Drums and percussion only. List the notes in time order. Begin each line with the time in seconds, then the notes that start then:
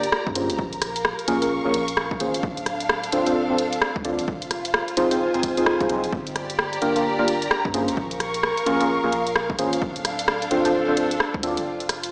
0.03 closed hi-hat
0.12 cross-stick
0.27 kick
0.35 closed hi-hat
0.50 closed hi-hat
0.59 kick
0.73 closed hi-hat
0.82 cross-stick, closed hi-hat
0.96 closed hi-hat
1.05 cross-stick
1.19 closed hi-hat
1.28 closed hi-hat
1.42 closed hi-hat
1.74 closed hi-hat
1.88 closed hi-hat
1.97 cross-stick
2.11 kick
2.20 closed hi-hat
2.34 closed hi-hat
2.43 kick
2.57 closed hi-hat
2.66 cross-stick, closed hi-hat
2.80 closed hi-hat
2.89 cross-stick
3.03 closed hi-hat
3.12 closed hi-hat
3.26 closed hi-hat
3.58 closed hi-hat
3.73 closed hi-hat
3.82 cross-stick
3.96 kick
4.05 closed hi-hat
4.19 closed hi-hat
4.28 kick
4.42 closed hi-hat
4.51 cross-stick, closed hi-hat
4.65 closed hi-hat
4.74 cross-stick
4.88 closed hi-hat
4.97 closed hi-hat
5.11 closed hi-hat
5.34 closed hi-hat
5.43 kick, closed hi-hat
5.57 closed hi-hat
5.66 cross-stick
5.80 kick, closed hi-hat
5.89 closed hi-hat
6.04 closed hi-hat
6.12 kick
6.27 closed hi-hat
6.36 cross-stick, closed hi-hat
6.50 closed hi-hat
6.59 cross-stick
6.73 closed hi-hat
6.82 closed hi-hat
6.96 closed hi-hat
7.28 closed hi-hat
7.42 closed hi-hat
7.51 cross-stick
7.65 kick
7.74 closed hi-hat
7.88 closed hi-hat
7.97 kick
8.11 closed hi-hat
8.20 cross-stick, closed hi-hat
8.34 closed hi-hat
8.43 cross-stick
8.57 closed hi-hat
8.66 closed hi-hat
8.80 closed hi-hat
9.12 closed hi-hat
9.27 closed hi-hat
9.36 cross-stick
9.50 kick
9.59 closed hi-hat
9.73 closed hi-hat
9.82 kick
9.96 closed hi-hat
10.05 cross-stick, closed hi-hat
10.19 closed hi-hat
10.28 cross-stick
10.42 closed hi-hat
10.51 closed hi-hat
10.65 closed hi-hat
10.97 closed hi-hat
11.11 closed hi-hat
11.20 cross-stick
11.34 kick
11.43 closed hi-hat
11.57 closed hi-hat
11.80 closed hi-hat
11.89 cross-stick, closed hi-hat
12.03 closed hi-hat